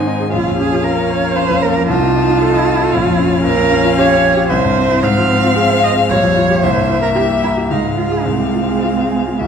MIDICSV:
0, 0, Header, 1, 5, 480
1, 0, Start_track
1, 0, Tempo, 522193
1, 294, Time_signature, 3, 2, 24, 8
1, 4135, Tempo, 533333
1, 6535, Tempo, 561272
1, 8509, End_track
2, 0, Start_track
2, 0, Title_t, "Violin"
2, 0, Program_c, 0, 40
2, 0, Note_on_c, 0, 80, 73
2, 293, Note_off_c, 0, 80, 0
2, 298, Note_on_c, 0, 77, 94
2, 1716, Note_off_c, 0, 77, 0
2, 1739, Note_on_c, 0, 81, 95
2, 2685, Note_on_c, 0, 77, 100
2, 2699, Note_off_c, 0, 81, 0
2, 4136, Note_on_c, 0, 76, 80
2, 4149, Note_off_c, 0, 77, 0
2, 4618, Note_on_c, 0, 77, 105
2, 4632, Note_off_c, 0, 76, 0
2, 6042, Note_off_c, 0, 77, 0
2, 6047, Note_on_c, 0, 76, 102
2, 6996, Note_on_c, 0, 77, 77
2, 7009, Note_off_c, 0, 76, 0
2, 8443, Note_on_c, 0, 76, 70
2, 8455, Note_off_c, 0, 77, 0
2, 8509, Note_off_c, 0, 76, 0
2, 8509, End_track
3, 0, Start_track
3, 0, Title_t, "Cello"
3, 0, Program_c, 1, 42
3, 0, Note_on_c, 1, 63, 104
3, 265, Note_off_c, 1, 63, 0
3, 290, Note_on_c, 1, 65, 101
3, 528, Note_off_c, 1, 65, 0
3, 532, Note_on_c, 1, 68, 111
3, 767, Note_on_c, 1, 70, 96
3, 781, Note_off_c, 1, 68, 0
3, 1007, Note_on_c, 1, 73, 114
3, 1020, Note_off_c, 1, 70, 0
3, 1247, Note_on_c, 1, 72, 127
3, 1261, Note_off_c, 1, 73, 0
3, 1492, Note_on_c, 1, 70, 117
3, 1505, Note_off_c, 1, 72, 0
3, 1723, Note_off_c, 1, 70, 0
3, 1729, Note_on_c, 1, 65, 127
3, 3137, Note_off_c, 1, 65, 0
3, 3164, Note_on_c, 1, 70, 127
3, 3642, Note_off_c, 1, 70, 0
3, 3653, Note_on_c, 1, 73, 127
3, 4123, Note_off_c, 1, 73, 0
3, 4128, Note_on_c, 1, 72, 127
3, 4611, Note_on_c, 1, 77, 127
3, 4624, Note_off_c, 1, 72, 0
3, 5330, Note_off_c, 1, 77, 0
3, 5335, Note_on_c, 1, 75, 127
3, 5407, Note_off_c, 1, 75, 0
3, 5573, Note_on_c, 1, 73, 127
3, 6050, Note_on_c, 1, 72, 117
3, 6064, Note_off_c, 1, 73, 0
3, 6402, Note_off_c, 1, 72, 0
3, 6407, Note_on_c, 1, 70, 111
3, 6457, Note_off_c, 1, 70, 0
3, 6526, Note_on_c, 1, 67, 108
3, 6595, Note_off_c, 1, 67, 0
3, 6763, Note_on_c, 1, 64, 99
3, 6832, Note_off_c, 1, 64, 0
3, 6997, Note_on_c, 1, 63, 100
3, 7225, Note_off_c, 1, 63, 0
3, 7230, Note_on_c, 1, 65, 100
3, 7470, Note_on_c, 1, 60, 99
3, 7482, Note_off_c, 1, 65, 0
3, 8509, Note_off_c, 1, 60, 0
3, 8509, End_track
4, 0, Start_track
4, 0, Title_t, "Grand piano"
4, 0, Program_c, 2, 0
4, 0, Control_c, 2, 64, 127
4, 0, Note_on_c, 2, 44, 72
4, 0, Note_on_c, 2, 51, 66
4, 65, Note_on_c, 2, 63, 62
4, 131, Note_off_c, 2, 51, 0
4, 184, Note_on_c, 2, 68, 59
4, 251, Note_off_c, 2, 63, 0
4, 279, Note_off_c, 2, 44, 0
4, 299, Note_off_c, 2, 68, 0
4, 305, Note_on_c, 2, 34, 80
4, 312, Control_c, 2, 64, 0
4, 431, Note_on_c, 2, 41, 64
4, 489, Control_c, 2, 64, 127
4, 547, Note_on_c, 2, 61, 66
4, 617, Note_off_c, 2, 41, 0
4, 667, Note_on_c, 2, 65, 68
4, 735, Note_off_c, 2, 61, 0
4, 782, Note_on_c, 2, 70, 74
4, 855, Note_off_c, 2, 65, 0
4, 901, Note_on_c, 2, 73, 74
4, 972, Note_off_c, 2, 70, 0
4, 1025, Note_on_c, 2, 77, 69
4, 1091, Note_off_c, 2, 73, 0
4, 1141, Note_on_c, 2, 70, 72
4, 1214, Note_off_c, 2, 77, 0
4, 1259, Note_on_c, 2, 61, 71
4, 1333, Note_off_c, 2, 70, 0
4, 1375, Note_on_c, 2, 41, 69
4, 1453, Note_off_c, 2, 61, 0
4, 1504, Note_on_c, 2, 58, 67
4, 1572, Note_off_c, 2, 41, 0
4, 1625, Note_on_c, 2, 41, 60
4, 1697, Note_off_c, 2, 58, 0
4, 1712, Note_off_c, 2, 34, 0
4, 1742, Note_on_c, 2, 36, 97
4, 1744, Note_off_c, 2, 41, 0
4, 1759, Control_c, 2, 64, 0
4, 1865, Note_on_c, 2, 48, 68
4, 1896, Control_c, 2, 64, 127
4, 1982, Note_on_c, 2, 63, 67
4, 2057, Note_off_c, 2, 48, 0
4, 2099, Note_on_c, 2, 65, 72
4, 2175, Note_off_c, 2, 63, 0
4, 2221, Note_on_c, 2, 69, 75
4, 2293, Note_off_c, 2, 65, 0
4, 2338, Note_on_c, 2, 75, 79
4, 2413, Note_off_c, 2, 69, 0
4, 2461, Note_on_c, 2, 77, 66
4, 2529, Note_off_c, 2, 75, 0
4, 2582, Note_on_c, 2, 69, 77
4, 2649, Note_off_c, 2, 77, 0
4, 2667, Note_off_c, 2, 36, 0
4, 2692, Note_on_c, 2, 34, 93
4, 2698, Note_off_c, 2, 69, 0
4, 2713, Control_c, 2, 64, 0
4, 2811, Note_on_c, 2, 41, 77
4, 2844, Control_c, 2, 64, 127
4, 2926, Note_on_c, 2, 61, 75
4, 3003, Note_off_c, 2, 41, 0
4, 3043, Note_on_c, 2, 65, 75
4, 3121, Note_off_c, 2, 61, 0
4, 3152, Note_off_c, 2, 34, 0
4, 3166, Note_on_c, 2, 34, 98
4, 3168, Note_off_c, 2, 65, 0
4, 3188, Control_c, 2, 64, 0
4, 3282, Note_on_c, 2, 41, 73
4, 3350, Control_c, 2, 64, 127
4, 3411, Note_on_c, 2, 61, 78
4, 3481, Note_off_c, 2, 41, 0
4, 3532, Note_on_c, 2, 65, 78
4, 3606, Note_off_c, 2, 61, 0
4, 3664, Note_on_c, 2, 67, 85
4, 3727, Note_off_c, 2, 65, 0
4, 3780, Note_on_c, 2, 73, 73
4, 3852, Note_off_c, 2, 67, 0
4, 3902, Note_on_c, 2, 77, 75
4, 3970, Note_off_c, 2, 73, 0
4, 4017, Note_on_c, 2, 67, 77
4, 4091, Note_off_c, 2, 77, 0
4, 4104, Note_off_c, 2, 34, 0
4, 4137, Note_off_c, 2, 67, 0
4, 4138, Note_on_c, 2, 36, 95
4, 4154, Control_c, 2, 64, 0
4, 4267, Note_on_c, 2, 43, 74
4, 4320, Control_c, 2, 64, 127
4, 4389, Note_on_c, 2, 60, 78
4, 4457, Note_off_c, 2, 43, 0
4, 4506, Note_on_c, 2, 64, 74
4, 4579, Note_off_c, 2, 60, 0
4, 4609, Note_off_c, 2, 36, 0
4, 4616, Note_on_c, 2, 44, 93
4, 4625, Note_off_c, 2, 64, 0
4, 4638, Control_c, 2, 64, 0
4, 4748, Note_on_c, 2, 53, 70
4, 4774, Control_c, 2, 64, 127
4, 4863, Note_on_c, 2, 60, 76
4, 4937, Note_off_c, 2, 53, 0
4, 4981, Note_on_c, 2, 65, 81
4, 5055, Note_off_c, 2, 60, 0
4, 5092, Note_on_c, 2, 68, 82
4, 5174, Note_off_c, 2, 65, 0
4, 5212, Note_on_c, 2, 72, 77
4, 5289, Note_off_c, 2, 68, 0
4, 5334, Note_on_c, 2, 77, 81
4, 5409, Note_off_c, 2, 72, 0
4, 5454, Note_on_c, 2, 68, 73
4, 5529, Note_off_c, 2, 77, 0
4, 5549, Note_off_c, 2, 44, 0
4, 5571, Note_on_c, 2, 34, 88
4, 5577, Note_off_c, 2, 68, 0
4, 5597, Control_c, 2, 64, 0
4, 5696, Note_on_c, 2, 41, 74
4, 5749, Control_c, 2, 64, 127
4, 5817, Note_on_c, 2, 65, 81
4, 5889, Note_off_c, 2, 41, 0
4, 5942, Note_on_c, 2, 67, 73
4, 6009, Note_off_c, 2, 65, 0
4, 6038, Note_off_c, 2, 34, 0
4, 6057, Note_on_c, 2, 36, 92
4, 6059, Note_off_c, 2, 67, 0
4, 6076, Control_c, 2, 64, 0
4, 6172, Note_on_c, 2, 43, 67
4, 6234, Control_c, 2, 64, 127
4, 6288, Note_on_c, 2, 64, 69
4, 6365, Note_off_c, 2, 43, 0
4, 6408, Note_on_c, 2, 70, 70
4, 6484, Note_off_c, 2, 64, 0
4, 6526, Note_on_c, 2, 67, 73
4, 6602, Note_off_c, 2, 70, 0
4, 6643, Note_on_c, 2, 76, 76
4, 6717, Note_off_c, 2, 67, 0
4, 6768, Note_on_c, 2, 82, 60
4, 6834, Note_off_c, 2, 76, 0
4, 6881, Note_on_c, 2, 67, 66
4, 6955, Note_off_c, 2, 82, 0
4, 6975, Note_off_c, 2, 36, 0
4, 6994, Note_on_c, 2, 37, 76
4, 7001, Note_off_c, 2, 67, 0
4, 7018, Control_c, 2, 64, 0
4, 7114, Note_on_c, 2, 44, 64
4, 7183, Control_c, 2, 64, 127
4, 7228, Note_on_c, 2, 65, 67
4, 7308, Note_off_c, 2, 44, 0
4, 7350, Note_on_c, 2, 68, 65
4, 7426, Note_off_c, 2, 65, 0
4, 7462, Note_off_c, 2, 37, 0
4, 7468, Note_on_c, 2, 36, 76
4, 7476, Note_off_c, 2, 68, 0
4, 7497, Control_c, 2, 64, 0
4, 7586, Note_on_c, 2, 48, 61
4, 7643, Control_c, 2, 64, 127
4, 7710, Note_on_c, 2, 65, 67
4, 7790, Note_off_c, 2, 48, 0
4, 7838, Note_on_c, 2, 68, 69
4, 7914, Note_off_c, 2, 65, 0
4, 7956, Note_on_c, 2, 65, 68
4, 8038, Note_off_c, 2, 68, 0
4, 8080, Note_on_c, 2, 77, 63
4, 8158, Note_off_c, 2, 65, 0
4, 8201, Note_on_c, 2, 80, 63
4, 8280, Note_off_c, 2, 77, 0
4, 8330, Note_on_c, 2, 65, 62
4, 8401, Note_off_c, 2, 80, 0
4, 8419, Note_off_c, 2, 36, 0
4, 8453, Note_off_c, 2, 65, 0
4, 8453, Note_on_c, 2, 36, 77
4, 8473, Control_c, 2, 64, 0
4, 8509, Note_off_c, 2, 36, 0
4, 8509, End_track
5, 0, Start_track
5, 0, Title_t, "Viola"
5, 0, Program_c, 3, 41
5, 0, Note_on_c, 3, 60, 73
5, 294, Note_off_c, 3, 60, 0
5, 299, Note_on_c, 3, 61, 76
5, 1717, Note_off_c, 3, 61, 0
5, 1748, Note_on_c, 3, 63, 82
5, 2700, Note_on_c, 3, 61, 91
5, 2714, Note_off_c, 3, 63, 0
5, 4148, Note_on_c, 3, 60, 92
5, 4162, Note_off_c, 3, 61, 0
5, 5585, Note_on_c, 3, 55, 84
5, 5599, Note_off_c, 3, 60, 0
5, 6057, Note_off_c, 3, 55, 0
5, 6062, Note_on_c, 3, 58, 84
5, 7003, Note_on_c, 3, 56, 79
5, 7016, Note_off_c, 3, 58, 0
5, 8452, Note_on_c, 3, 55, 75
5, 8465, Note_off_c, 3, 56, 0
5, 8509, Note_off_c, 3, 55, 0
5, 8509, End_track
0, 0, End_of_file